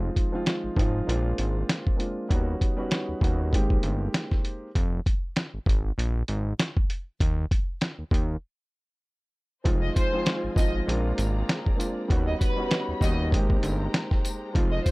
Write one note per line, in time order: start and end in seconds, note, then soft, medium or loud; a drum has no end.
0.00 0.11 F1 loud
0.00 0.29 F3 medium
0.00 0.29 G#3 medium
0.00 0.29 C4 medium
0.00 0.30 D#4 medium
0.00 0.30 F4 loud
0.16 kick medium
0.16 closed hi-hat medium
0.32 0.74 F3 medium
0.32 0.74 G#3 medium
0.32 0.74 C4 medium
0.32 0.75 D#4 medium
0.32 0.75 F4 loud
0.46 snare loud
0.46 closed hi-hat medium
0.64 0.69 G#1 soft
0.76 1.02 G#1 medium
0.76 1.08 F3 loud
0.76 1.05 G#3 medium
0.76 1.07 C4 medium
0.76 1.09 D#4 medium
0.76 1.08 F4 loud
0.76 kick loud
0.76 closed hi-hat medium
1.07 1.33 A#1 loud
1.07 1.93 G#3 medium
1.07 1.93 A#3 medium
1.07 1.94 C4 medium
1.07 1.94 D4 medium
1.07 1.94 F4 loud
1.07 closed hi-hat medium
1.38 1.64 G#1 medium
1.38 closed hi-hat medium
1.69 snare loud
1.69 closed hi-hat loud
1.87 kick medium
1.96 2.26 G#3 medium
1.96 2.27 A#3 medium
1.96 2.27 C4 medium
1.96 2.28 D4 medium
1.96 2.28 F4 medium
1.96 closed hi-hat medium
2.29 2.56 D#2 loud
2.29 2.73 G3 medium
2.29 2.74 B3 medium
2.29 2.74 C#4 medium
2.29 2.74 D#4 medium
2.29 2.75 F#4 loud
2.29 kick loud
2.29 closed hi-hat medium
2.61 kick medium
2.61 closed hi-hat medium
2.77 3.18 G3 loud
2.77 3.19 B3 medium
2.77 3.19 C#4 medium
2.77 3.20 D#4 medium
2.77 3.20 F#4 medium
2.91 snare loud
2.91 closed hi-hat medium
3.09 3.14 D#2 soft
3.21 3.54 D#2 loud
3.21 3.52 G3 medium
3.21 3.53 B3 medium
3.21 3.53 C#4 medium
3.21 3.53 D#4 medium
3.21 3.54 F#4 loud
3.21 kick loud
3.21 closed hi-hat medium
3.52 3.78 G#1 loud
3.52 4.66 G#3 medium
3.52 4.67 A#3 medium
3.52 4.67 C4 medium
3.52 4.67 D#4 medium
3.52 4.68 G4 loud
3.52 kick medium
3.52 closed hi-hat medium
3.70 kick medium
3.83 4.09 G1 loud
3.83 closed hi-hat medium
4.14 snare loud
4.14 closed hi-hat medium
4.31 kick medium
4.31 snare soft
4.45 closed hi-hat medium
4.75 5.01 F1 loud
4.75 kick loud
4.75 closed hi-hat medium
5.06 kick medium
5.06 closed hi-hat medium
5.36 snare loud
5.36 closed hi-hat medium
5.54 5.59 G#1 soft
5.66 5.92 G#1 medium
5.66 kick loud
5.66 closed hi-hat medium
5.98 6.23 A#1 loud
5.98 closed hi-hat medium
6.28 6.54 G#1 loud
6.28 closed hi-hat medium
6.60 snare loud
6.60 closed hi-hat medium
6.77 kick medium
6.90 closed hi-hat medium
7.20 7.46 D#2 loud
7.20 kick loud
7.20 closed hi-hat loud
7.51 kick loud
7.51 closed hi-hat medium
7.81 snare loud
7.81 closed hi-hat medium
7.99 8.04 D#2 soft
8.11 8.37 D#2 loud
8.11 kick loud
8.11 closed hi-hat medium
9.64 9.90 F1 loud
9.64 10.08 F3 medium
9.64 10.09 G#3 medium
9.64 10.09 C4 medium
9.64 10.09 D#4 medium
9.64 10.87 F4 medium
9.64 10.10 F4 loud
9.64 10.87 C5 medium
9.64 10.87 D#5 medium
9.64 10.87 G#5 medium
9.64 kick loud
9.64 closed hi-hat loud
9.82 9.94 D#5 medium
9.96 10.23 C5 medium
9.96 kick medium
9.96 closed hi-hat medium
9.96 tambourine soft
10.12 10.53 F3 medium
10.12 10.54 G#3 medium
10.12 10.54 C4 medium
10.12 10.54 D#4 medium
10.12 10.55 F4 loud
10.26 snare loud
10.26 closed hi-hat medium
10.44 10.49 G#1 soft
10.56 10.82 G#1 medium
10.56 10.87 F3 loud
10.56 10.85 G#3 medium
10.56 10.86 C4 medium
10.56 10.88 D#4 loud
10.56 10.88 F4 loud
10.56 10.72 D#5 medium
10.56 kick loud
10.56 closed hi-hat medium
10.56 tambourine medium
10.87 11.13 A#1 loud
10.87 11.72 G#3 medium
10.87 11.73 A#3 medium
10.87 11.73 C4 medium
10.87 11.74 D4 medium
10.87 11.74 F4 loud
10.87 12.09 G#4 medium
10.87 12.09 C5 medium
10.87 12.09 D5 medium
10.87 12.09 A#5 medium
10.87 closed hi-hat medium
11.18 11.43 G#1 loud
11.18 closed hi-hat medium
11.18 tambourine medium
11.49 snare loud
11.49 closed hi-hat loud
11.66 kick medium
11.76 12.06 G#3 medium
11.76 12.07 A#3 medium
11.76 12.07 C4 medium
11.76 12.07 D4 medium
11.76 12.08 F4 medium
11.76 closed hi-hat medium
11.81 tambourine medium
12.08 12.35 D#2 loud
12.08 12.53 G3 loud
12.08 13.31 G3 medium
12.08 12.53 B3 medium
12.08 12.54 C#4 medium
12.08 12.54 D#4 medium
12.08 12.54 F#4 loud
12.08 13.31 C#5 medium
12.08 13.31 D#5 medium
12.08 13.31 B5 medium
12.08 kick loud
12.08 closed hi-hat loud
12.28 12.40 D#5 medium
12.41 12.69 B4 medium
12.41 kick loud
12.41 closed hi-hat medium
12.41 tambourine soft
12.56 12.98 G3 loud
12.56 12.98 B3 medium
12.56 12.99 C#4 medium
12.56 12.99 D#4 medium
12.56 13.00 F#4 loud
12.71 snare loud
12.71 closed hi-hat medium
12.88 12.94 D#2 soft
13.00 13.34 D#2 loud
13.00 13.32 G3 medium
13.00 13.32 B3 medium
13.00 13.32 C#4 medium
13.00 13.33 D#4 medium
13.00 13.33 F#4 loud
13.00 13.18 D#5 medium
13.00 kick loud
13.00 closed hi-hat medium
13.00 tambourine medium
13.32 13.58 G#1 loud
13.32 14.46 G#3 loud
13.32 14.91 G#3 medium
13.32 14.46 A#3 medium
13.32 14.47 C4 medium
13.32 14.47 D#4 medium
13.32 14.48 G4 loud
13.32 14.54 C5 medium
13.32 14.54 G5 medium
13.32 14.54 A#5 medium
13.32 kick medium
13.32 closed hi-hat medium
13.50 kick medium
13.63 13.88 G1 loud
13.63 closed hi-hat medium
13.63 tambourine medium
13.94 snare loud
13.94 closed hi-hat loud
14.11 kick medium
14.11 snare soft
14.25 closed hi-hat medium
14.25 tambourine medium
14.54 14.80 F1 loud
14.54 14.91 F3 medium
14.54 14.91 G#3 medium
14.54 14.91 C4 medium
14.54 14.91 D#4 medium
14.54 14.91 F4 loud
14.54 14.91 D#5 medium
14.54 14.91 F5 medium
14.54 14.91 C6 loud
14.54 kick loud
14.54 closed hi-hat loud
14.72 14.84 D#5 medium
14.85 14.91 C5 medium
14.85 kick medium
14.85 closed hi-hat medium
14.85 tambourine soft